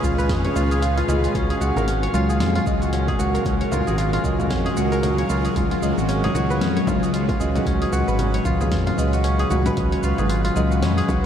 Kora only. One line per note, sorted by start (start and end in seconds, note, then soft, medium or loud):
0.00 1.07 G#3 medium
0.00 0.29 C#4 loud
0.00 0.55 F4 loud
0.00 0.71 G#4 loud
0.18 1.41 B4 loud
0.29 1.35 C#4 medium
0.45 1.60 C#5 medium
0.56 0.82 F4 loud
0.71 1.50 G#4 medium
0.82 0.97 F4 medium
0.97 1.23 F4 loud
1.08 1.40 G#3 medium
1.24 1.67 F4 medium
1.35 1.87 C#4 loud
1.50 2.29 G#4 medium
1.61 2.20 F#4 medium
1.76 3.04 A#4 loud
1.88 2.93 C#4 medium
2.03 3.18 C#5 medium
2.14 2.40 F4 loud
2.29 3.08 G#4 medium
2.40 2.55 F4 medium
2.56 2.88 F4 loud
2.66 4.23 G#3 medium
2.82 3.19 F#4 medium
2.93 3.45 C#4 loud
3.08 3.87 G#4 loud
3.19 3.78 F#4 loud
3.34 4.62 A#4 medium
3.45 4.50 C#4 medium
3.61 4.75 C#5 medium
3.72 3.97 F4 medium
3.87 4.65 G#4 medium
3.98 4.13 F4 medium
4.13 4.45 F4 loud
4.24 5.61 G#3 medium
4.39 4.76 F#4 medium
4.50 5.02 C#4 loud
4.66 5.45 G#4 loud
4.77 5.36 F#4 loud
4.92 6.19 A#4 loud
5.03 6.08 C#4 medium
5.18 6.33 C#5 medium
5.30 5.56 F4 loud
5.45 6.23 G#4 medium
5.56 5.71 F4 medium
5.71 6.04 F4 loud
5.82 7.39 G#3 medium
5.98 6.34 F#4 medium
6.08 6.61 C#4 loud
6.24 7.02 G#4 loud
6.35 6.93 F#4 loud
6.50 7.73 B4 medium
6.61 7.66 C#4 medium
6.76 7.91 C#5 medium
6.87 7.13 F4 loud
7.03 7.81 G#4 medium
7.14 7.28 F4 medium
7.29 7.61 F4 loud
7.40 8.97 G#3 medium
7.55 7.92 F#4 medium
7.67 8.19 C#4 loud
7.82 8.60 G#4 loud
7.93 8.51 F#4 loud
8.08 9.31 B4 loud
8.19 9.24 C#4 medium
8.34 9.49 C#5 medium
8.45 8.71 F4 loud
8.61 9.39 G#4 medium
8.71 8.86 F4 medium
8.87 9.19 F4 loud
8.98 9.82 G#3 medium
9.13 9.50 F#4 medium
9.24 9.76 C#4 loud
9.39 10.18 G#4 loud
9.51 10.09 F#4 loud
9.66 10.89 B4 loud
9.77 10.82 C#4 medium
9.92 11.07 C#5 medium
10.03 10.29 F4 loud
10.19 10.97 G#4 medium
10.29 10.44 F4 medium
10.44 10.77 F4 loud
10.56 11.26 G#3 medium
10.71 11.08 F#4 medium
10.82 11.26 C#4 loud
10.97 11.26 G#4 loud
11.08 11.26 F#4 loud